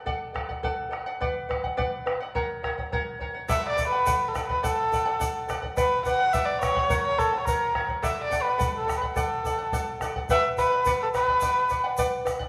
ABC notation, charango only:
X:1
M:2/4
L:1/16
Q:1/4=106
K:D
V:1 name="Charango"
[Adf]2 [Adf] [df] [Adf]2 [Adf] [df] | [Bdf]2 [Bdf] [df] [Bdf]2 [Bdf] [df] | [^Acf]2 [Acf] [cf] [Acf]2 [Acf] [cf] | [Adf]2 [Adf] [df] [Adf]2 [Adf] [df] |
[Adf]2 [Adf] [df] [Adf]2 [Adf] [df] | [Bdf]2 [Bdf] [df] [Bdf]2 [Bdf] [df] | [^Acf]2 [Acf] [cf] [Acf]2 [Acf] [cf] | [Adf]2 [Adf] [df] [Adf]2 [Adf] [df] |
[Adf]2 [Adf] [df] [Adf]2 [Adf] [df] | [Bdf]2 [Bdf] [df] [Bdf]2 [Bdf] [df] | [Bdf]2 [Bdf] [df] [Bdf]2 [Bdf] [df] |]